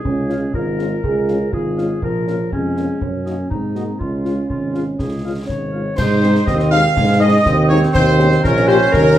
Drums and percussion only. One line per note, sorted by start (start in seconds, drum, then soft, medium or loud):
0.05 concert bass drum medium
0.30 snare soft
0.54 concert bass drum medium
0.79 snare soft
1.04 concert bass drum medium
1.28 snare soft
1.53 concert bass drum medium
1.78 snare soft
2.02 concert bass drum medium
2.28 snare soft
2.52 concert bass drum medium
2.77 snare soft
3.01 concert bass drum medium
3.26 snare soft
3.51 concert bass drum medium
3.76 snare soft
4.01 concert bass drum medium
4.25 snare soft
4.50 concert bass drum medium
4.75 snare soft
4.99 concert bass drum medium
4.99 snare soft
5.49 concert bass drum medium
5.49 snare soft
5.98 concert bass drum medium
5.98 snare medium
5.98 crash medium
6.23 snare medium
6.35 snare medium
6.47 concert bass drum medium
6.47 snare medium
6.60 snare medium
6.72 snare medium
6.97 concert bass drum medium
6.97 snare medium
7.46 concert bass drum medium
7.46 snare medium
7.83 snare medium
7.95 concert bass drum medium
7.95 snare medium
7.95 crash soft
8.20 snare medium
8.32 snare medium
8.45 concert bass drum medium
8.45 snare medium
8.57 snare medium
8.69 snare medium
8.94 concert bass drum medium
8.94 snare medium